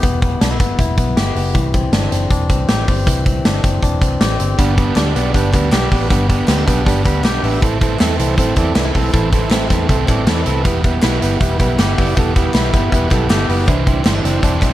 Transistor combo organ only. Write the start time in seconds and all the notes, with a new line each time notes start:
4.58 D4 G4 B4
4.77 D4 G4 B4
4.96 D4 G4 D5
5.15 D4 G4 D5
5.34 D4 G4 B4
5.53 D4 G4 B4
5.72 D4 G4 B4
5.92 D4 G4 B4
6.11 D4 G4 B4
6.29 D4 G4 B4
6.48 D4 G4 B4
6.67 D4 G4 B4
6.86 D4 G4 B4
7.05 D4 G4 B4 B5
7.24 D4 G4 B4 G5
7.44 D4 G4 B4 E5
7.61 E4 A4 C5
7.81 E4 A4 C5
8.00 E4 A4 C5
8.19 E4 A4 C5
8.38 E4 A4 C5
8.56 E4 A4 D5
8.75 E4 A4 B4
8.95 E4 A4 C5
9.14 E4 A4 C5
9.33 E4 A4 C5
9.52 E4 A4 C5
9.71 E4 A4 C5
9.89 E4 A4 C5
10.08 E4 A4 D5
10.27 E4 A4 D5
10.46 E4 A4 B4
10.65 E4 G4 B4
10.84 E4 G4 B4
11.04 E4 G4 B4
11.22 E4 G4 B4
11.40 E4 G4 B4
11.60 E4 G4 B4
11.79 E4 G4 B4
11.99 E4 G4 D5
12.17 E4 G4 A4
12.36 E4 G4 B4
12.55 E4 G4 B4
12.74 E4 G4 B4
12.92 E4 G4 B4
13.11 E4 G4 A4
13.30 E4 G4 A4
13.49 E4 G4 B4
13.67 D4 E4 C5
13.87 D4 E4 C5
14.05 D4 E4 C5
14.24 D4 E4 C5
14.43 D4 E4 C5
14.62 D4 E4 C5